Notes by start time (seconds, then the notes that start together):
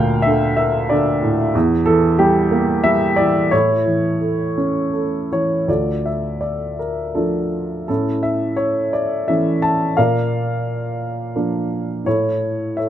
Already playing: D2 A#2 A#4 F5 G5
0.22 E5
0.27 D3
0.57 A#4 E5
0.90 D3 D5
1.22 A2
1.55 E2
1.86 E3 A4
2.19 G3 G4
2.51 A#3
2.84 G3 E5
3.16 E3 D5
3.51 A2 C#5
3.56 E4
3.86 E3
4.21 A3
4.58 C#4
4.93 A3
5.32 E3 C#5
5.68 D2 F4 A4 D5
6.06 E5
6.41 D5
6.79 A#4
7.15 F3 A3 D4 F4 A4
7.88 A2 C#4 E4 A4
8.23 E5
8.56 C#5
8.93 D5
9.28 E3 A3 C#4 E5
9.62 A5
9.97 A#2 A#4 D5 F5
11.36 F3 A#3 D4
12.05 A2 E4 A4 C#5
12.77 A4 C#5 E5